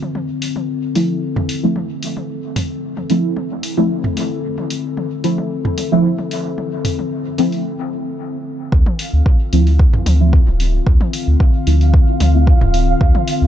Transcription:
Already playing: D3 C4 F4
0.03 high tom
0.15 A4, high tom
0.42 open hi-hat
0.56 high tom
0.95 F3 A3 C4 E4, open hi-hat, high tom
1.36 mid tom, high tom
1.49 open hi-hat
1.63 F3 A3 C4 E4
1.76 high tom
2.03 open hi-hat
2.17 high tom
2.56 mid tom, open hi-hat, high tom
2.97 high tom
3.10 F3 A3 C4 E4, open hi-hat
3.37 high tom
3.63 open hi-hat
3.77 F3 A3 C4 E4, high tom
4.04 mid tom
4.17 open hi-hat, high tom
4.58 high tom
4.70 open hi-hat
4.97 high tom
5.24 F3 A3 C4 E4, open hi-hat
5.38 high tom
5.65 mid tom
5.78 open hi-hat, high tom
5.92 F3 A3 C4 E4
6.19 high tom
6.31 open hi-hat
6.58 high tom
6.85 mid tom, open hi-hat
6.99 high tom
7.38 F3 A3 C4 E4, open hi-hat, high tom
7.52 open hi-hat
8.72 D2 D3 C4 F4 F5, kick
8.86 high tom
8.99 open hi-hat
9.13 D2
9.26 kick
9.53 D2 F3 A3 C4 E4, open hi-hat
9.67 open hi-hat
9.79 kick
9.93 mid tom
10.06 D2, open hi-hat, high tom
10.20 F3 A3 C4 E4
10.33 kick
10.47 D1
10.60 open hi-hat
10.87 D2, kick
11.01 high tom
11.13 open hi-hat
11.27 D2
11.40 kick
11.67 D2 F3 A3 C4 E4, open hi-hat
11.81 open hi-hat
11.94 kick
12.20 D2, open hi-hat, high tom
12.35 F3 A3 C4 E4
12.47 kick
12.61 D1, mid tom
12.74 open hi-hat
13.01 D2, kick
13.15 high tom
13.28 open hi-hat
13.42 D2

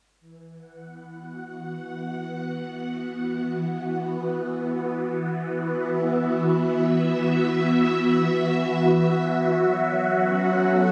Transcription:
0.21 E3
0.58 F#5
0.83 B3
1.21 F#4
5.78 E5
9.62 F#3
10.06 C#4
10.68 A4

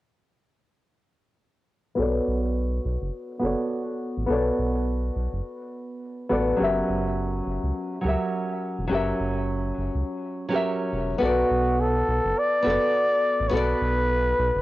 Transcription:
1.95 B1 B3 F#4 A4
2.00 C#5 D5
2.27 B1
2.85 B1
3.02 F#1
3.39 F#1 B3 F#4 A4
3.44 C#5 D5
4.17 A1
4.26 B1 B3 F#4 A4
4.32 C#5 D5
4.59 B1
5.16 B1
5.33 F#1
6.29 A1 B3 F#4 A4 D5
6.56 F#3 C#4 G4
6.61 F#1 A#4 E5
6.89 F#1
7.47 F#1
7.63 C#2
8.01 C#2 F#3 C#4 G4
8.06 A#4 E5
8.79 E1
8.87 F#1 F#3 C#4 G4
8.93 A#4 E5
9.20 F#1
9.78 F#1
9.95 C#2
10.49 F#3 C#4 G4
10.54 A#4 E5
10.93 E1
11.18 B1 B3 F#4 A4
11.22 F#4 D5
11.51 B1
11.80 A4
12.08 B1
12.25 F#1
12.38 D5
12.63 F#1 B3 F#4 A4
12.70 D5
13.40 A1
13.48 B3 F#4 C#5
13.52 B1 A4 B4
13.57 D5
13.81 B1
14.39 B1
14.55 F#1

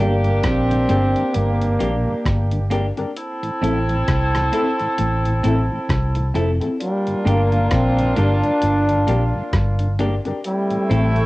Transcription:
Already playing: G2 A#3 D4 G4
0.00 G1 A#3 D4 G4 A#4
0.23 G2 D3, closed hi-hat
0.43 A#1 A#2 C4, kick, cross-stick, closed hi-hat
0.69 G2 D3, muted clean electric guitar stroke, closed hi-hat
0.89 G1 G2 G3 A#3 D4 G4 A#4, closed hi-hat
1.16 G2 D3, closed hi-hat
1.34 G1 G2 A#3, closed hi-hat
1.61 G2 D3, closed hi-hat
1.79 A#1 A#2 G3 A#3 D4 G4 A#4, closed hi-hat
2.08 G2 D3
2.25 G1 G2, kick, cross-stick, closed hi-hat
2.52 G2 D3, closed hi-hat
2.70 G3 A#3 D4 G4 A#4, closed hi-hat
2.98 G2 D3 D4 G4 A#4, closed hi-hat
3.17 C4 E4 A4, closed hi-hat
3.42 A2 E3, closed hi-hat
3.61 A1 A2 A3 C4 E4 A4, closed hi-hat
3.89 A2 E3, closed hi-hat
4.08 C2 C3, kick, cross-stick, closed hi-hat
4.33 A2 E3, muted clean electric guitar stroke, cross-stick, closed hi-hat
4.52 A3 C4 E4 A4, closed hi-hat
4.80 A2 E3, closed hi-hat
4.98 A1 A2, closed hi-hat
5.25 A2 E3, closed hi-hat
5.43 A1 A2 A3 C4 E4 A4, closed hi-hat
5.72 A2 E3
5.89 C2 C3, kick, cross-stick, closed hi-hat
6.15 A2 E3, muted clean electric guitar stroke, closed hi-hat
6.34 F1 F2 A3 C4 E4 A4, closed hi-hat
6.61 A2 E3 C4 E4 A4, closed hi-hat
6.80 G3 A#3 D4 F4, closed hi-hat
7.07 G2 D3, closed hi-hat
7.25 G1 G2 G3 A#3 D4 G4 A#4, closed hi-hat
7.52 G2 D3, closed hi-hat
7.71 A#1 A#2 C4, kick, cross-stick, closed hi-hat
7.97 G2 D3, muted clean electric guitar stroke, closed hi-hat
8.16 G1 G2 G3 A#3 D4 G4 A#4, closed hi-hat
8.43 G2 D3, closed hi-hat
8.62 G1 G2, closed hi-hat
8.89 G2 D3, closed hi-hat
9.07 A#1 A#2 G3 A#3 D4 G4 A#4, closed hi-hat
9.35 G2 D3
9.53 G1 G2, kick, cross-stick, closed hi-hat
9.79 G2 D3, closed hi-hat
9.99 G3 A#3 D4 G4 A#4, closed hi-hat
10.25 G2 D3 D4 G4 A#4, closed hi-hat
10.44 G3 A3 C4 E4, closed hi-hat
10.70 A2 E3, closed hi-hat
10.89 A1 A2 A3 C4 E4 A4, closed hi-hat
11.16 A2 E3, closed hi-hat

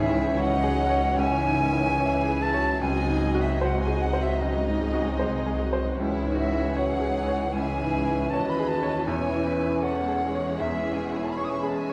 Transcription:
Already playing: C#2 G#2 E3 G#3 C#4 G#4 C#5
0.00 E4 E5
0.10 E4
0.37 F#3 D#4 C#5 D#5 F#5
0.63 G#4
0.82 C#4
0.90 C#5
1.16 C#2 E3 C#4 E5 G#5
1.20 E3
1.44 G#2
1.62 D#3
1.72 E4
1.99 E3 G#4 C#5
2.04 E4
2.28 G#4
2.42 F#3 A5
2.54 C#5
2.81 C#2 F#3 C4 D#4 G#4 D#5 G#5
3.07 G#2
3.35 F#4
3.40 E5
3.61 F#3 C4 D#4 F#4 C5 D#5 F#5
3.79 G#5
3.87 G#4
4.01 F#5
4.13 C5
4.20 E5
4.38 C#2 F#3 G#3 C4 F#4 D#5
4.66 G#2
4.80 G#4
4.93 F#4
5.19 C2 G#4 C5
5.46 G#4
5.59 F#4
5.73 C5
5.98 C#2 C#3 E3 G#3 C#4 E4 C#5
6.25 G#2
6.36 F#4 E5
6.52 E4
6.76 F#3 D#4 G#4 C#5 F#5
7.01 G#4
7.15 E3
7.28 C#5
7.52 C#2 E3 C#4 G#4 E5 G#5
7.80 G#2
8.05 E4
8.30 D#2 F#4 B4 C#5 D#5 A5
8.49 B5
8.59 G#4
8.67 A5
8.83 C#5
9.00 A5
9.05 E1 E2 E3 C#4 E4 C#5 G#5
9.33 E3
9.45 B4
9.59 E4
9.81 G#3 C#4 A4 C#5 F#5
9.85 F#5
10.08 G#4
10.22 G#4
10.35 C#5
10.57 E2 E3 C#4 E5
10.85 E3
10.93 G#5
11.05 F#5
11.12 E4 G#5
11.24 A5
11.30 B5
11.35 G#3 C#5 E5 C#6
11.44 D#6
11.49 C#6
11.59 G#4 B5
11.67 A5
11.75 G#5
11.89 C#5

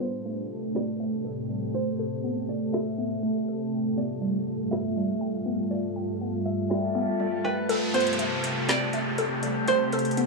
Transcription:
Already playing: A2 C3 A3 G4 A4 D5 E5
0.00 B3 C5
0.26 A3
0.75 C4 D5, snare
1.00 A3
1.25 A4
1.49 G3
1.74 C5
1.99 A4
2.24 B3
2.48 D5, open hi-hat
2.73 A4 E5, snare
2.98 B3
3.23 A3
3.48 A4
3.73 G2 G3 F4 G5
3.97 B3 D5
4.21 G3
4.71 B3 E5, snare
4.97 G3
5.21 G5
5.46 B3
5.71 D5, closed hi-hat
5.96 G5, closed hi-hat
6.04 closed hi-hat
6.12 closed hi-hat
6.21 B3, closed hi-hat
6.45 E5, open hi-hat
6.70 D5 G5, snare
6.95 B3, closed hi-hat
7.20 G3, closed hi-hat
7.44 B4 G5, closed hi-hat
7.69 C3 A3 G4 A4, closed hi-hat, downlifter
7.94 B3 C5, closed hi-hat
8.00 closed hi-hat
8.07 closed hi-hat
8.13 closed hi-hat
8.19 A3, closed hi-hat
8.44 closed hi-hat
8.69 C4 D5, snare, closed hi-hat
8.93 A3, closed hi-hat
9.18 A4, closed hi-hat
9.43 G3, closed hi-hat
9.68 C5, closed hi-hat
9.93 A4, closed hi-hat
9.99 closed hi-hat
10.05 closed hi-hat
10.11 closed hi-hat
10.17 B3, closed hi-hat

